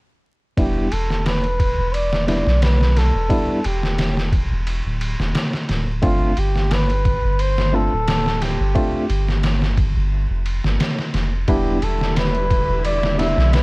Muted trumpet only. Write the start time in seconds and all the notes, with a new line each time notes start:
0.59 G4
0.92 A4
1.26 B4
1.94 D5
2.28 D5
2.63 B4
2.97 A4
3.66 G4
6.05 F4
6.39 G4
6.72 B4
7.40 C5
7.75 A4
8.42 G4
11.50 G4
11.84 A4
12.17 B4
12.85 D5
13.19 E5
13.53 B4